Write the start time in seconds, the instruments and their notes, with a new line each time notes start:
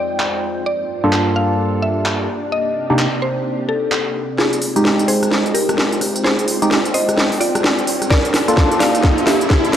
Already playing: string machine F2 G#3 C4 D#4 G5, ambient pad F4 C5 G5, synth pluck D5
0.20 clap
0.66 string machine G2 A#3 D4 F4 A4, ambient pad G4, synth pluck D5
1.04 synth stab G2 A#3 D4 F4 A4
1.13 clap
1.30 ambient pad D5
1.36 synth pluck F5
1.40 ambient pad A5
1.82 synth pluck E5
2.06 clap
2.29 string machine C3 D#4 G4, ambient pad C4
2.52 synth pluck D#5
2.90 synth stab C3 A#3 D4 D#4 G4
2.99 clap
3.22 synth pluck C5
3.69 synth pluck A4
3.92 clap
4.38 sub bass F1, string machine G#3 C4 D#4 G4, ambient pad F4, synth pluck F4 G#4, snare, riser
4.53 closed hi-hat
4.62 open hi-hat
4.76 sub bass F1, synth stab G#3 D#4 G4, closed hi-hat
4.85 snare
4.89 ambient pad C5
4.99 closed hi-hat
5.08 synth pluck G#4 C5, open hi-hat
5.22 sub bass C2, cross-stick, closed hi-hat
5.31 snare
5.46 closed hi-hat
5.54 sub bass F1, synth pluck G4 A#4, open hi-hat
5.66 ambient pad G5, cross-stick, closed hi-hat
5.78 snare
5.92 closed hi-hat
6.01 cross-stick, open hi-hat
6.16 sub bass F1, closed hi-hat
6.24 synth pluck G#4 C5, string machine D5, snare
6.39 closed hi-hat
6.48 open hi-hat
6.62 sub bass F1, synth stab G#3 D#4 G4, closed hi-hat
6.71 snare
6.85 closed hi-hat
6.94 synth pluck C5 D#5, open hi-hat
7.09 sub bass C2, cross-stick, closed hi-hat
7.18 snare
7.32 open hi-hat
7.40 sub bass F1, synth pluck F4 D5, open hi-hat
7.55 cross-stick, closed hi-hat
7.64 snare
7.79 closed hi-hat
7.87 sub bass C2, open hi-hat
8.02 cross-stick, closed hi-hat
8.10 sub bass G1, string machine A#3 F4 A4, ambient pad G4, synth pluck A#4 D5, kick, snare
8.19 ambient pad D5
8.25 closed hi-hat
8.34 snare, open hi-hat
8.48 sub bass G1, synth stab A#3 F4 A4, closed hi-hat
8.57 kick, snare
8.72 ambient pad A5, closed hi-hat
8.80 synth pluck D5 F5, snare, open hi-hat
8.95 sub bass D2, closed hi-hat
9.03 kick, snare
9.18 closed hi-hat
9.27 sub bass G1, synth pluck G4 E5, snare, open hi-hat
9.41 closed hi-hat
9.50 kick, snare
9.64 closed hi-hat
9.73 string machine D#4 G4, snare, open hi-hat